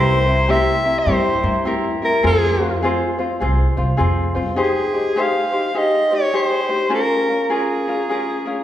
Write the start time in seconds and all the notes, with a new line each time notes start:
Already playing: C2 C4 E4 G4 A#4 C5
0.27 C4 E4 A#4
0.48 C4 E4 G4 A#4 E5
0.84 C4 E4 A#4
0.99 C5
1.06 G2 C4 E4 G4 A#4
1.43 G2 C4 E4 A#4
1.65 C4 E4 G4 A#4
2.02 C4 E4 A#4
2.23 F2 C4 F4 G#4 C5
2.60 C4 F4 C5
2.82 C4 F4 G#4 C5
3.19 C4 F4 C5
3.40 C2 C4 F4 G#4 C5
3.77 C2 C4 F4 C5
3.97 F2 C4 F4 G#4 C5
4.35 G2 C4 F4 C5
4.56 D#4 G4 G#4 C5
4.63 G#4
4.93 D#4 G4 C5
5.15 D#4 G4 G#4 C5
5.21 F5
5.52 D#4 G4 C5
5.74 D#4 G4 G#4 C5 D#5
6.11 D#4 G4 C5
6.15 C#5
6.33 D#4 G4 G#4 C5
6.69 D#4 G4 C5
6.89 C#4 F4 G#4 A#4
6.94 A#4
7.28 C#4 F4 A#4
7.50 C#4 F4 G#4 A#4
7.88 C#4 F4 A#4
8.09 C#4 F4 G#4 A#4
8.46 C#4 F4 A#4